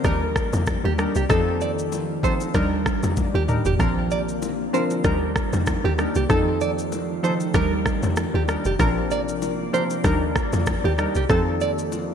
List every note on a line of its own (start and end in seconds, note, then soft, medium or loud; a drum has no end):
0.00 1.26 A#3 medium
0.04 0.39 D#2 loud
0.04 0.91 G3 medium
0.04 0.92 D4 medium
0.04 0.92 D#4 medium
0.04 0.92 A#4 loud
0.04 0.22 A#4 medium
0.04 kick loud
0.04 cross-stick medium
0.04 low conga medium
0.04 shaker medium
0.36 kick medium
0.36 cross-stick medium
0.36 shaker medium
0.53 0.76 F2 medium
0.53 low bongo medium
0.53 shaker medium
0.67 kick medium
0.67 cross-stick medium
0.67 high bongo medium
0.67 low conga medium
0.67 shaker medium
0.84 1.07 D#2 loud
0.84 0.93 G4 medium
0.84 high bongo medium
0.98 1.14 G3 medium
0.98 1.14 D4 medium
0.98 1.14 D#4 medium
0.98 1.14 A#4 medium
0.98 cross-stick medium
0.98 shaker soft
1.15 1.26 C2 medium
1.15 1.24 G4 medium
1.15 shaker medium
1.29 2.19 F2 loud
1.29 2.16 F3 medium
1.29 2.17 C4 medium
1.29 2.17 D#4 medium
1.29 2.17 A4 loud
1.29 1.39 A4 loud
1.29 kick loud
1.29 cross-stick medium
1.29 low conga medium
1.29 shaker medium
1.61 1.71 D5 medium
1.61 shaker medium
1.79 shaker medium
1.92 high bongo medium
1.92 shaker medium
2.23 2.52 F3 medium
2.23 2.52 C4 medium
2.23 2.52 D#4 medium
2.23 2.53 A4 medium
2.23 2.33 C5 medium
2.23 kick medium
2.23 low bongo medium
2.23 shaker medium
2.40 high bongo medium
2.40 shaker medium
2.54 2.89 D#2 loud
2.54 3.41 G3 medium
2.54 6.26 A#3 medium
2.54 3.42 D4 medium
2.54 3.42 D#4 medium
2.54 3.42 A#4 loud
2.54 2.72 A#4 medium
2.54 kick loud
2.54 cross-stick medium
2.54 low conga medium
2.54 shaker medium
2.86 kick medium
2.86 cross-stick loud
2.86 shaker medium
3.03 3.26 F2 medium
3.03 low bongo medium
3.03 shaker medium
3.17 kick medium
3.17 high tom medium
3.17 high bongo medium
3.17 low conga medium
3.17 shaker medium
3.34 3.57 D#2 medium
3.34 3.42 G4 medium
3.34 high bongo medium
3.48 3.64 G3 medium
3.48 3.64 D4 medium
3.48 3.64 D#4 medium
3.48 3.65 A#4 medium
3.48 mid tom medium
3.48 shaker soft
3.65 3.76 F1 medium
3.65 3.74 G4 medium
3.65 floor tom medium
3.65 shaker medium
3.79 4.69 A#1 loud
3.79 4.66 F3 medium
3.79 4.67 C4 medium
3.79 4.67 D4 medium
3.79 4.67 A#4 medium
3.79 3.89 A#4 loud
3.79 kick loud
3.79 cross-stick medium
3.79 low conga medium
3.79 shaker medium
4.11 4.21 D5 medium
4.11 shaker medium
4.29 shaker medium
4.42 high bongo medium
4.42 shaker medium
4.73 5.02 F3 medium
4.73 5.02 C4 medium
4.73 5.02 D4 medium
4.73 5.03 A#4 medium
4.73 4.83 C5 medium
4.73 low bongo medium
4.73 shaker medium
4.90 high bongo medium
4.90 shaker medium
5.04 5.39 D#2 loud
5.04 8.76 D#3 medium
5.04 5.91 G3 medium
5.04 5.92 D4 medium
5.04 5.92 D#4 medium
5.04 5.92 A#4 medium
5.04 5.22 A#4 medium
5.04 kick loud
5.04 cross-stick medium
5.04 low conga medium
5.04 shaker medium
5.36 kick medium
5.36 cross-stick loud
5.36 shaker medium
5.53 5.76 F2 loud
5.53 low bongo medium
5.53 shaker medium
5.66 kick medium
5.66 cross-stick loud
5.66 high bongo medium
5.66 low conga medium
5.66 shaker medium
5.84 6.07 D#2 loud
5.84 5.92 G4 medium
5.84 high bongo medium
5.98 6.14 G3 medium
5.98 6.14 D4 medium
5.98 6.14 D#4 medium
5.98 6.14 A#4 medium
5.98 cross-stick medium
5.98 shaker soft
6.15 6.26 C2 medium
6.15 6.24 G4 medium
6.15 shaker medium
6.29 7.19 F2 loud
6.29 7.16 F3 medium
6.29 7.17 C4 medium
6.29 7.17 D#4 medium
6.29 7.17 A4 loud
6.29 6.39 A4 loud
6.29 kick loud
6.29 cross-stick medium
6.29 low conga medium
6.29 shaker medium
6.61 6.71 D5 medium
6.61 shaker medium
6.79 shaker medium
6.92 high bongo medium
6.92 shaker medium
7.23 7.52 F3 medium
7.23 7.52 C4 medium
7.23 7.52 D#4 medium
7.23 7.52 A4 medium
7.23 7.33 C5 medium
7.23 low bongo medium
7.23 shaker medium
7.40 high bongo soft
7.40 shaker medium
7.54 7.89 D#2 loud
7.54 8.41 G3 medium
7.54 11.26 A#3 medium
7.54 8.41 D4 medium
7.54 8.42 D#4 medium
7.54 8.42 A#4 loud
7.54 7.72 A#4 medium
7.54 11.26 D5 medium
7.54 kick loud
7.54 cross-stick medium
7.54 low conga medium
7.54 shaker medium
7.86 kick medium
7.86 cross-stick medium
7.86 shaker medium
8.03 8.26 F2 medium
8.03 low bongo loud
8.03 shaker medium
8.16 cross-stick medium
8.16 high bongo medium
8.16 low conga medium
8.16 shaker medium
8.34 8.57 D#2 medium
8.34 8.42 G4 medium
8.34 high bongo medium
8.48 8.64 G3 medium
8.48 8.64 D4 medium
8.48 8.64 D#4 medium
8.48 8.64 A#4 medium
8.48 cross-stick medium
8.48 shaker soft
8.65 8.76 F1 medium
8.65 8.74 G4 medium
8.65 shaker medium
8.79 9.69 A#1 loud
8.79 9.66 F3 medium
8.79 9.66 C4 medium
8.79 9.67 D4 medium
8.79 9.67 A#4 loud
8.79 8.89 A#4 loud
8.79 kick loud
8.79 cross-stick medium
8.79 low conga medium
8.79 shaker medium
9.11 9.21 D5 medium
9.11 shaker medium
9.28 shaker medium
9.42 high bongo medium
9.42 shaker medium
9.73 10.02 F3 medium
9.73 10.02 C4 medium
9.73 10.02 D4 medium
9.73 10.02 A#4 medium
9.73 9.83 C5 medium
9.73 low bongo medium
9.73 shaker medium
9.90 high bongo medium
9.90 shaker medium
10.04 10.39 D#2 loud
10.04 12.14 D#3 medium
10.04 10.91 G3 medium
10.04 10.91 D4 medium
10.04 10.92 D#4 medium
10.04 10.92 A#4 loud
10.04 10.22 A#4 medium
10.04 kick loud
10.04 cross-stick medium
10.04 low conga medium
10.04 shaker medium
10.36 kick medium
10.36 cross-stick medium
10.36 shaker medium
10.53 10.76 F2 loud
10.53 low bongo medium
10.53 shaker medium
10.66 kick medium
10.66 cross-stick medium
10.66 high bongo medium
10.66 low conga medium
10.66 shaker medium
10.84 11.07 D#2 loud
10.84 10.92 G4 medium
10.84 high bongo medium
10.98 11.14 G3 medium
10.98 11.14 D4 medium
10.98 11.14 D#4 medium
10.98 11.14 A#4 medium
10.98 cross-stick medium
10.98 shaker soft
11.15 11.26 C2 medium
11.15 11.24 G4 medium
11.15 shaker medium
11.29 12.14 F2 loud
11.29 12.14 F3 medium
11.29 12.14 C4 medium
11.29 12.14 D#4 medium
11.29 12.14 A4 loud
11.29 11.39 A4 loud
11.29 kick loud
11.29 cross-stick medium
11.29 low conga medium
11.29 shaker medium
11.61 11.71 D5 medium
11.61 shaker medium
11.78 shaker medium
11.92 high bongo medium
11.92 shaker medium